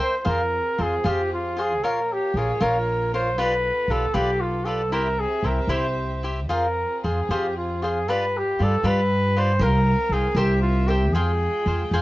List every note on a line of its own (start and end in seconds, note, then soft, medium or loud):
0.00 0.24 C4 medium
0.00 0.14 A#4 medium
0.00 0.24 A#4 medium
0.00 0.14 C5 medium
0.00 0.19 C5 loud
0.00 0.14 E5 medium
0.00 0.24 E5 medium
0.00 0.14 G5 medium
0.19 0.29 C5 medium
0.25 0.60 F2 medium
0.25 1.81 C4 medium
0.25 0.41 F4 medium
0.25 1.81 F4 medium
0.25 0.41 G#4 medium
0.25 1.81 G#4 medium
0.25 0.83 A#4 medium
0.25 0.41 C5 medium
0.25 0.41 F5 medium
0.78 0.95 F2 medium
0.78 0.93 F4 soft
0.78 0.93 G#4 soft
0.78 1.09 G#4 medium
0.78 0.94 C5 soft
0.78 0.94 F5 medium
1.04 1.82 F2 medium
1.04 1.20 F4 medium
1.04 1.32 G4 medium
1.04 1.20 G#4 medium
1.04 1.21 C5 medium
1.04 1.21 F5 medium
1.34 1.62 F4 medium
1.56 1.72 F4 medium
1.56 1.73 G#4 medium
1.56 1.85 G#4 medium
1.56 1.73 C5 medium
1.56 1.73 F5 medium
1.82 2.16 A#1 loud
1.82 3.36 A#3 medium
1.82 4.89 F4 medium
1.82 1.99 F4 medium
1.82 1.99 A#4 medium
1.82 2.14 A#4 medium
1.82 3.36 C#5 medium
1.82 1.99 C#5 medium
1.82 1.99 F5 medium
2.13 2.38 G4 medium
2.34 2.50 A#1 medium
2.34 2.51 F4 soft
2.34 2.64 G#4 medium
2.34 2.51 A#4 medium
2.38 2.51 C#5 soft
2.38 2.52 F5 soft
2.60 3.36 A#1 medium
2.60 2.76 F4 medium
2.60 2.76 A#4 medium
2.60 3.13 A#4 medium
2.60 2.77 C#5 medium
2.60 2.77 F5 medium
3.14 3.28 F4 medium
3.14 3.28 A#4 medium
3.14 3.40 C5 loud
3.14 3.28 C#5 medium
3.14 3.29 F5 medium
3.36 3.70 B1 loud
3.36 4.90 B3 medium
3.36 3.53 F4 medium
3.36 3.53 G4 medium
3.36 4.90 A4 medium
3.36 3.92 B4 medium
3.36 3.54 B4 medium
3.36 3.54 D5 medium
3.88 4.04 B1 medium
3.88 4.04 F4 soft
3.88 4.05 G4 medium
3.88 4.16 A4 medium
3.88 4.05 B4 soft
3.88 4.05 D5 soft
4.14 4.90 B1 medium
4.14 4.30 F4 medium
4.14 4.30 G4 medium
4.14 4.42 G4 medium
4.14 4.29 B4 medium
4.14 4.30 D5 medium
4.41 4.67 F4 medium
4.65 4.81 F4 medium
4.65 4.81 G4 medium
4.65 4.94 A4 medium
4.65 4.82 B4 medium
4.65 4.82 D5 medium
4.89 5.24 C2 medium
4.89 6.47 C4 medium
4.89 5.07 E4 medium
4.89 6.47 G4 medium
4.89 5.08 G4 medium
4.89 5.21 A#4 medium
4.89 5.08 C5 medium
4.89 6.47 E5 medium
4.89 5.08 E5 medium
5.20 5.48 G#4 medium
5.43 5.60 C2 medium
5.43 5.59 E4 soft
5.43 5.59 G4 soft
5.43 5.72 A#4 medium
5.43 5.59 C5 medium
5.43 5.60 E5 soft
5.67 6.49 C2 medium
5.67 5.86 E4 medium
5.67 5.86 G4 medium
5.67 5.86 C5 medium
5.67 6.23 C5 medium
5.67 5.86 E5 medium
6.23 6.39 E4 soft
6.23 6.39 G4 medium
6.23 6.39 C5 medium
6.23 6.39 E5 medium
6.48 6.83 F2 loud
6.48 8.05 C4 medium
6.48 9.58 F4 medium
6.48 6.66 F4 medium
6.48 8.06 G#4 medium
6.48 6.66 G#4 medium
6.48 6.66 C5 medium
6.48 6.66 F5 medium
6.52 7.01 A#4 medium
7.04 7.21 F2 medium
7.04 7.19 F4 soft
7.04 7.19 G#4 soft
7.04 7.32 G#4 medium
7.04 7.19 C5 soft
7.04 7.19 F5 soft
7.29 8.08 F2 medium
7.29 7.46 F4 medium
7.29 7.57 G4 medium
7.29 7.46 G#4 medium
7.29 7.46 C5 medium
7.29 7.46 F5 medium
7.57 7.84 F4 medium
7.82 7.97 F4 medium
7.82 8.11 G#4 medium
7.82 7.98 G#4 medium
7.82 7.98 C5 medium
7.82 7.98 F5 medium
8.08 8.41 G2 loud
8.08 9.61 G3 medium
8.08 8.24 F4 medium
8.08 8.24 G4 medium
8.08 9.60 B4 medium
8.08 8.39 B4 medium
8.08 8.24 B4 medium
8.08 8.25 D5 medium
8.37 8.65 G4 medium
8.59 8.76 G2 medium
8.59 8.74 F4 soft
8.59 8.75 G4 medium
8.59 8.75 B4 soft
8.59 8.75 D5 soft
8.64 8.88 A4 medium
8.83 9.61 G2 medium
8.83 9.00 F4 medium
8.83 9.00 G4 medium
8.83 9.00 B4 medium
8.83 9.40 B4 loud
8.83 9.00 D5 medium
9.36 9.51 F4 medium
9.36 9.51 G4 medium
9.36 9.52 B4 medium
9.36 9.64 C5 loud
9.36 9.52 D5 medium
9.60 9.93 C2 loud
9.60 11.14 C4 medium
9.60 9.77 A#4 medium
9.60 11.14 A#4 medium
9.60 10.14 A#4 loud
9.60 9.77 C5 medium
9.60 10.37 F5 medium
9.60 9.77 F5 medium
9.60 9.77 G5 medium
10.09 10.27 C2 medium
10.09 10.39 G#4 medium
10.09 10.27 A#4 medium
10.09 10.28 C5 soft
10.09 10.28 F5 soft
10.14 10.28 G5 medium
10.35 11.12 C2 loud
10.35 10.61 G4 loud
10.35 10.53 A#4 medium
10.35 10.53 C5 medium
10.35 10.53 E5 medium
10.35 10.53 G5 medium
10.39 11.15 E5 medium
10.62 10.89 F4 medium
10.88 11.15 G4 medium
10.88 11.04 A#4 medium
10.88 11.04 C5 medium
10.88 11.05 E5 medium
10.88 11.05 G5 medium
11.12 11.47 F2 loud
11.12 12.02 G#3 medium
11.12 12.02 F4 medium
11.12 12.02 G#4 medium
11.12 11.30 G#4 medium
11.12 11.31 C5 medium
11.12 11.31 F5 medium
11.12 12.02 G5 medium
11.12 11.31 G5 medium
11.66 11.83 F2 medium
11.66 11.82 G#4 soft
11.66 11.82 C5 soft
11.66 11.83 F5 soft
11.66 11.83 G5 soft
11.91 12.02 F2 medium
11.91 12.02 G#4 medium
11.91 12.02 C5 medium
11.91 12.02 F5 medium
11.91 12.02 G5 medium